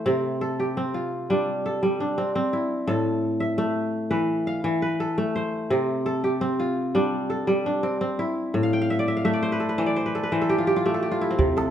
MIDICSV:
0, 0, Header, 1, 3, 480
1, 0, Start_track
1, 0, Tempo, 706714
1, 46, Time_signature, 4, 2, 24, 8
1, 7949, End_track
2, 0, Start_track
2, 0, Title_t, "Kora"
2, 0, Program_c, 0, 46
2, 0, Note_on_c, 0, 52, 70
2, 0, Note_on_c, 0, 57, 64
2, 0, Note_on_c, 0, 69, 61
2, 0, Note_on_c, 0, 72, 54
2, 39, Note_on_c, 0, 48, 70
2, 40, Note_on_c, 0, 60, 64
2, 80, Note_off_c, 0, 52, 0
2, 278, Note_off_c, 0, 69, 0
2, 280, Note_on_c, 0, 69, 60
2, 405, Note_on_c, 0, 67, 55
2, 521, Note_off_c, 0, 60, 0
2, 523, Note_on_c, 0, 60, 68
2, 608, Note_off_c, 0, 72, 0
2, 640, Note_on_c, 0, 65, 59
2, 883, Note_on_c, 0, 55, 67
2, 884, Note_on_c, 0, 62, 54
2, 1039, Note_off_c, 0, 57, 0
2, 1123, Note_off_c, 0, 69, 0
2, 1125, Note_on_c, 0, 69, 55
2, 1233, Note_off_c, 0, 55, 0
2, 1241, Note_on_c, 0, 55, 67
2, 1358, Note_off_c, 0, 62, 0
2, 1361, Note_on_c, 0, 62, 58
2, 1364, Note_off_c, 0, 67, 0
2, 1476, Note_off_c, 0, 60, 0
2, 1479, Note_on_c, 0, 60, 64
2, 1597, Note_off_c, 0, 60, 0
2, 1600, Note_on_c, 0, 60, 66
2, 1628, Note_off_c, 0, 48, 0
2, 1668, Note_off_c, 0, 65, 0
2, 1719, Note_on_c, 0, 64, 54
2, 1950, Note_off_c, 0, 69, 0
2, 1952, Note_on_c, 0, 69, 64
2, 1953, Note_on_c, 0, 45, 71
2, 1994, Note_off_c, 0, 55, 0
2, 2311, Note_on_c, 0, 76, 59
2, 2431, Note_on_c, 0, 57, 73
2, 2501, Note_off_c, 0, 62, 0
2, 2783, Note_off_c, 0, 64, 0
2, 2789, Note_on_c, 0, 52, 66
2, 2789, Note_on_c, 0, 71, 54
2, 2829, Note_off_c, 0, 60, 0
2, 2847, Note_off_c, 0, 69, 0
2, 3013, Note_off_c, 0, 76, 0
2, 3036, Note_on_c, 0, 77, 59
2, 3144, Note_off_c, 0, 52, 0
2, 3152, Note_on_c, 0, 52, 67
2, 3272, Note_off_c, 0, 71, 0
2, 3275, Note_on_c, 0, 71, 59
2, 3396, Note_on_c, 0, 69, 63
2, 3514, Note_off_c, 0, 57, 0
2, 3516, Note_on_c, 0, 57, 67
2, 3542, Note_off_c, 0, 45, 0
2, 3637, Note_on_c, 0, 72, 59
2, 3678, Note_off_c, 0, 71, 0
2, 3714, Note_off_c, 0, 77, 0
2, 3874, Note_on_c, 0, 48, 75
2, 3876, Note_on_c, 0, 60, 60
2, 3913, Note_off_c, 0, 52, 0
2, 4112, Note_off_c, 0, 69, 0
2, 4115, Note_on_c, 0, 69, 60
2, 4237, Note_on_c, 0, 67, 57
2, 4352, Note_off_c, 0, 60, 0
2, 4354, Note_on_c, 0, 60, 69
2, 4444, Note_off_c, 0, 72, 0
2, 4480, Note_on_c, 0, 65, 59
2, 4718, Note_on_c, 0, 55, 65
2, 4720, Note_on_c, 0, 62, 58
2, 4873, Note_off_c, 0, 57, 0
2, 4954, Note_off_c, 0, 69, 0
2, 4957, Note_on_c, 0, 69, 58
2, 5068, Note_off_c, 0, 55, 0
2, 5076, Note_on_c, 0, 55, 74
2, 5196, Note_off_c, 0, 67, 0
2, 5200, Note_off_c, 0, 62, 0
2, 5203, Note_on_c, 0, 62, 58
2, 5316, Note_off_c, 0, 60, 0
2, 5319, Note_on_c, 0, 60, 64
2, 5437, Note_off_c, 0, 60, 0
2, 5440, Note_on_c, 0, 60, 66
2, 5464, Note_off_c, 0, 48, 0
2, 5508, Note_off_c, 0, 65, 0
2, 5563, Note_on_c, 0, 64, 57
2, 5801, Note_on_c, 0, 45, 70
2, 5836, Note_off_c, 0, 55, 0
2, 5852, Note_off_c, 0, 69, 0
2, 5862, Note_on_c, 0, 77, 64
2, 5930, Note_on_c, 0, 79, 66
2, 5984, Note_off_c, 0, 77, 0
2, 5987, Note_on_c, 0, 77, 64
2, 6028, Note_off_c, 0, 64, 0
2, 6046, Note_on_c, 0, 76, 66
2, 6106, Note_on_c, 0, 74, 67
2, 6164, Note_off_c, 0, 76, 0
2, 6167, Note_on_c, 0, 76, 63
2, 6207, Note_off_c, 0, 77, 0
2, 6226, Note_on_c, 0, 77, 63
2, 6278, Note_off_c, 0, 76, 0
2, 6281, Note_on_c, 0, 57, 73
2, 6281, Note_on_c, 0, 76, 64
2, 6337, Note_off_c, 0, 74, 0
2, 6340, Note_on_c, 0, 74, 63
2, 6344, Note_off_c, 0, 62, 0
2, 6402, Note_on_c, 0, 72, 66
2, 6467, Note_on_c, 0, 71, 63
2, 6508, Note_off_c, 0, 60, 0
2, 6520, Note_on_c, 0, 69, 61
2, 6563, Note_off_c, 0, 79, 0
2, 6579, Note_off_c, 0, 71, 0
2, 6582, Note_on_c, 0, 71, 60
2, 6623, Note_off_c, 0, 72, 0
2, 6643, Note_on_c, 0, 72, 58
2, 6644, Note_on_c, 0, 52, 69
2, 6684, Note_off_c, 0, 77, 0
2, 6696, Note_off_c, 0, 74, 0
2, 6699, Note_on_c, 0, 74, 62
2, 6765, Note_off_c, 0, 72, 0
2, 6767, Note_on_c, 0, 72, 60
2, 6808, Note_off_c, 0, 71, 0
2, 6831, Note_on_c, 0, 71, 59
2, 6891, Note_off_c, 0, 69, 0
2, 6894, Note_on_c, 0, 69, 59
2, 6948, Note_off_c, 0, 71, 0
2, 6951, Note_on_c, 0, 71, 61
2, 6983, Note_off_c, 0, 76, 0
2, 6992, Note_off_c, 0, 72, 0
2, 7001, Note_off_c, 0, 52, 0
2, 7009, Note_on_c, 0, 52, 66
2, 7010, Note_on_c, 0, 72, 61
2, 7071, Note_off_c, 0, 69, 0
2, 7074, Note_on_c, 0, 69, 62
2, 7128, Note_on_c, 0, 67, 65
2, 7189, Note_on_c, 0, 65, 64
2, 7245, Note_off_c, 0, 67, 0
2, 7248, Note_on_c, 0, 67, 68
2, 7308, Note_off_c, 0, 65, 0
2, 7311, Note_on_c, 0, 65, 64
2, 7370, Note_off_c, 0, 57, 0
2, 7371, Note_off_c, 0, 67, 0
2, 7373, Note_on_c, 0, 57, 63
2, 7374, Note_on_c, 0, 67, 57
2, 7390, Note_off_c, 0, 45, 0
2, 7428, Note_off_c, 0, 69, 0
2, 7431, Note_on_c, 0, 69, 55
2, 7452, Note_off_c, 0, 74, 0
2, 7486, Note_off_c, 0, 67, 0
2, 7488, Note_on_c, 0, 67, 57
2, 7546, Note_off_c, 0, 65, 0
2, 7549, Note_on_c, 0, 65, 58
2, 7617, Note_on_c, 0, 64, 62
2, 7679, Note_on_c, 0, 60, 63
2, 7719, Note_off_c, 0, 71, 0
2, 7733, Note_on_c, 0, 48, 74
2, 7762, Note_off_c, 0, 52, 0
2, 7816, Note_off_c, 0, 72, 0
2, 7853, Note_off_c, 0, 69, 0
2, 7856, Note_on_c, 0, 69, 61
2, 7949, Note_off_c, 0, 48, 0
2, 7949, Note_off_c, 0, 57, 0
2, 7949, Note_off_c, 0, 60, 0
2, 7949, Note_off_c, 0, 64, 0
2, 7949, Note_off_c, 0, 65, 0
2, 7949, Note_off_c, 0, 67, 0
2, 7949, Note_off_c, 0, 69, 0
2, 7949, End_track
3, 0, Start_track
3, 0, Title_t, "Calabash"
3, 7736, Note_on_c, 9, 36, 60
3, 7804, Note_off_c, 9, 36, 0
3, 7863, Note_on_c, 9, 38, 48
3, 7931, Note_off_c, 9, 38, 0
3, 7949, End_track
0, 0, End_of_file